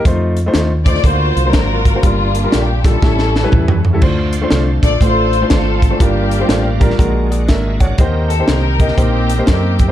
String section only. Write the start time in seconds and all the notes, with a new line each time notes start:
0.86 D5
1.04 F4 F#4 C5
1.53 F4 F#4 A#4
2.03 A#3 D4 F4
2.52 G4
2.83 C#4 E4 A4
4.84 D5
5.04 F4 A4 C5
5.50 C4 F4 A4
6.00 A#3 D4 G4
8.29 A4
8.48 G4 A#4
8.96 A#3 C4 G4
9.47 A#3 C4 G4